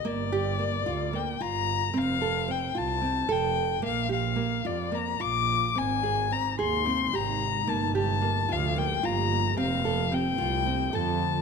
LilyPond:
<<
  \new Staff \with { instrumentName = "Violin" } { \time 7/8 \key g \minor \tempo 4 = 111 d''2 g''8 bes''4 | f''4 g''8 a''4 g''4 | f''8 f''4 d''8 bes''8 d'''4 | aes''4 bes''8 c'''4 bes''4 |
a''8 a''4 f''8 g''8 bes''4 | f''4 g''4. a''4 | }
  \new Staff \with { instrumentName = "Nylon-string guitar" } { \time 7/8 \key g \minor bes8 g'8 bes8 f'8 bes8 f'4 | c'8 a'8 c'8 f'8 c'8 a'4 | bes8 g'8 bes8 f'8 bes8 f'4 | c'8 aes'8 c'8 aes'8 c'8 g'4 |
bes8 g'8 bes8 f'8 bes8 f'4 | c'8 a'8 c'8 f'8 c'8 a'4 | }
  \new Staff \with { instrumentName = "Ambient pad" } { \time 7/8 \key g \minor r2. r8 | r2. r8 | r2. r8 | <c aes ees'>2.~ <c aes ees'>8 |
<f bes g'>2.~ <f bes g'>8 | <d a f'>2.~ <d a f'>8 | }
  \new Staff \with { instrumentName = "Double bass" } { \clef bass \time 7/8 \key g \minor g,,4. d,4 g,,4 | f,,4. c,4 f,,4 | bes,,4. f,4 bes,,4 | aes,,4. ees,4 aes,,4 |
g,,4. d,4 g,,4 | f,,4. c,4 f,4 | }
>>